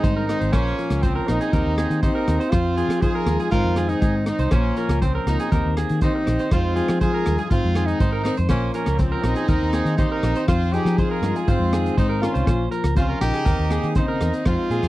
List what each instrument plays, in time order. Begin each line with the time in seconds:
Already playing: clean electric guitar D#3 G#3, horn section C4 D#4
0.03 clean electric guitar G2 C5, fingered electric bass G#2, kick, closed hi-hat
0.16 clean electric guitar A#4
0.27 clean electric guitar G#2, horn section C4 D#4, cross-stick, closed hi-hat
0.40 fingered electric bass G#1, clean electric guitar C5, closed hi-hat
0.52 fingered electric bass A#1, clean electric guitar A#2 C5, horn section A#3 C#4, kick, cross-stick, closed hi-hat
0.79 clean electric guitar F3, muted clean electric guitar stroke, closed hi-hat
0.90 fingered electric bass C#2, cross-stick, closed hi-hat
1.02 horn section F3 C4, clean electric guitar C#4 C5, kick, closed hi-hat
1.15 clean electric guitar A#4
1.27 fingered electric bass A#1, clean electric guitar A#3, horn section C4 D#4, cross-stick, closed hi-hat
1.41 clean electric guitar G#4, closed hi-hat
1.53 fingered electric bass D#2, clean electric guitar A#3 C4 G4 A#4, muted clean electric guitar stroke, kick, closed hi-hat
1.66 fingered electric bass D#2
1.78 clean electric guitar A#3 G#4, cross-stick, closed hi-hat
1.90 fingered electric bass D#3, closed hi-hat
2.02 horn section C4 D#4, clean electric guitar G4 C5, kick, closed hi-hat
2.15 clean electric guitar A#4
2.28 fingered electric bass D#2, clean electric guitar C4, cross-stick, closed hi-hat
2.40 clean electric guitar C5, closed hi-hat
2.50 clean electric guitar F2 C5, fingered electric bass F2, horn section C4 F4, kick, cross-stick, closed hi-hat
2.77 clean electric guitar F3 G#4, closed hi-hat
2.89 fingered electric bass F3, cross-stick, closed hi-hat
3.00 clean electric guitar D#4 C5, horn section F4 G#4, kick, closed hi-hat
3.15 clean electric guitar A#4
3.26 fingered electric bass D#2, clean electric guitar G#3, cross-stick, closed hi-hat
3.40 clean electric guitar G#4, closed hi-hat
3.51 fingered electric bass G#2, clean electric guitar G#2 D#3 C4 D#4 A#4, horn section C4 F4, kick, closed hi-hat
3.64 fingered electric bass F2
3.76 clean electric guitar D#3 G#4, cross-stick, closed hi-hat
3.89 horn section C4 D#4, closed hi-hat
4.02 fingered electric bass G#2, clean electric guitar D#4 G#4, kick, closed hi-hat
4.26 clean electric guitar C4, horn section C4 D#4, cross-stick, closed hi-hat
4.39 fingered electric bass C2, clean electric guitar C5, closed hi-hat
4.51 fingered electric bass A#1, clean electric guitar A#2 C5, horn section A#3 C#4, kick, cross-stick, closed hi-hat
4.77 clean electric guitar F3 A#4, closed hi-hat
4.89 fingered electric bass C#2, cross-stick, closed hi-hat
5.02 horn section F3 C4, clean electric guitar C#4 C5, kick, closed hi-hat
5.15 clean electric guitar A#4
5.27 fingered electric bass C#2, clean electric guitar A#3, horn section C4 D#4, cross-stick, closed hi-hat
5.39 clean electric guitar G#4, closed hi-hat
5.51 fingered electric bass D#2, clean electric guitar D#3 A#3 C4 G4 A#4, kick, closed hi-hat
5.65 fingered electric bass D#2
5.76 clean electric guitar A#3 G#4, cross-stick, closed hi-hat
5.89 fingered electric bass D#3, closed hi-hat
6.01 horn section C4 D#4, clean electric guitar G4 C5, kick, closed hi-hat
6.15 muted clean electric guitar stroke
6.26 fingered electric bass A#1, clean electric guitar C4, cross-stick, closed hi-hat
6.39 clean electric guitar C5, closed hi-hat
6.51 fingered electric bass F2, clean electric guitar F3 G#3 D#4 C5, horn section C4 F4, muted clean electric guitar stroke, kick, cross-stick, closed hi-hat
6.76 clean electric guitar F3 G#4, closed hi-hat
6.88 fingered electric bass F3, cross-stick, closed hi-hat
7.00 clean electric guitar F2 C5, horn section F4 G#4, kick, closed hi-hat
7.14 clean electric guitar A#4
7.26 fingered electric bass D#2, clean electric guitar G2, cross-stick, closed hi-hat
7.38 clean electric guitar G#4, closed hi-hat
7.50 clean electric guitar G#2, fingered electric bass G#2, horn section C4 F4, muted clean electric guitar stroke, kick, closed hi-hat
7.65 fingered electric bass F2
7.75 clean electric guitar D#3 G#4, cross-stick, closed hi-hat
7.86 horn section C4 D#4, closed hi-hat
8.00 fingered electric bass G#2, clean electric guitar D#4 C5, kick, closed hi-hat
8.12 clean electric guitar A#4
8.24 clean electric guitar C4, horn section C4 D#4, cross-stick, closed hi-hat
8.37 fingered electric bass F2, clean electric guitar C5, closed hi-hat
8.49 fingered electric bass A#1, clean electric guitar A#2 C5, horn section A#3 C#4, kick, cross-stick, closed hi-hat
8.74 clean electric guitar F3 A#4, horn section A#3 C#4, closed hi-hat
8.86 fingered electric bass C#2, cross-stick, closed hi-hat
8.98 horn section F3 C4, clean electric guitar C#4, muted clean electric guitar stroke, kick, closed hi-hat
9.12 clean electric guitar A#4
9.23 fingered electric bass A#1, clean electric guitar C4, horn section C4 D#4, cross-stick, closed hi-hat
9.36 clean electric guitar G#4, closed hi-hat
9.48 fingered electric bass D#2, clean electric guitar D#3 A#4, kick, closed hi-hat
9.62 fingered electric bass D#2
9.73 clean electric guitar A#3 G#4, cross-stick, closed hi-hat
9.85 fingered electric bass D#3, closed hi-hat
9.97 horn section C4 D#4, clean electric guitar G4 C5, kick, closed hi-hat
10.12 clean electric guitar A#4
10.23 fingered electric bass A#1, clean electric guitar C4, cross-stick, closed hi-hat
10.35 clean electric guitar C5, closed hi-hat
10.47 clean electric guitar F2 C5, fingered electric bass F2, horn section C4 F4, kick, cross-stick, closed hi-hat
10.72 clean electric guitar F3 G#4, horn section D#4 G4, closed hi-hat
10.85 fingered electric bass F3, cross-stick, closed hi-hat
10.98 clean electric guitar D#4 C5, horn section F4 G#4, kick, closed hi-hat
11.11 clean electric guitar A#4
11.22 fingered electric bass G2, clean electric guitar G#3, cross-stick, closed hi-hat
11.36 clean electric guitar G#4, closed hi-hat
11.48 clean electric guitar G#2 C5, fingered electric bass G#2, horn section C4 F4, kick, closed hi-hat
11.59 fingered electric bass F2
11.72 clean electric guitar D#3 G#4, cross-stick, closed hi-hat
11.86 closed hi-hat
11.97 fingered electric bass G#2, horn section C4 D#4, clean electric guitar D#4 C5, kick, closed hi-hat
12.09 clean electric guitar A#4
12.22 clean electric guitar C4, horn section C#4 F4, cross-stick, closed hi-hat
12.34 fingered electric bass C2, clean electric guitar C5, closed hi-hat
12.46 fingered electric bass A#1, clean electric guitar A#2 C5, kick, cross-stick, closed hi-hat
12.71 clean electric guitar F3 A#4, closed hi-hat
12.84 fingered electric bass C#2, cross-stick, closed hi-hat
12.95 clean electric guitar C3 C5, horn section C#4 F4, kick, closed hi-hat
13.09 clean electric guitar A#4
13.20 fingered electric bass A#1, clean electric guitar C#3, horn section D#4 G4, cross-stick, closed hi-hat
13.34 clean electric guitar G#4, closed hi-hat
13.44 fingered electric bass D#2, clean electric guitar D#3 A#3 C4 A#4, kick, closed hi-hat
13.59 fingered electric bass D#2
13.70 clean electric guitar A#3 G#4, cross-stick, closed hi-hat
13.83 fingered electric bass D#3, closed hi-hat
13.95 clean electric guitar C#3 C5, horn section C4 D#4, kick, closed hi-hat
14.08 clean electric guitar A#4
14.20 fingered electric bass E2, clean electric guitar D#3, cross-stick, closed hi-hat
14.34 closed hi-hat
14.45 clean electric guitar F2 F3 G#3 D#4 C5, fingered electric bass F2, horn section C4 F4, kick, cross-stick, crash
14.70 fingered electric bass A#2, clean electric guitar G#3 G#4, closed hi-hat
14.83 fingered electric bass F2, cross-stick, closed hi-hat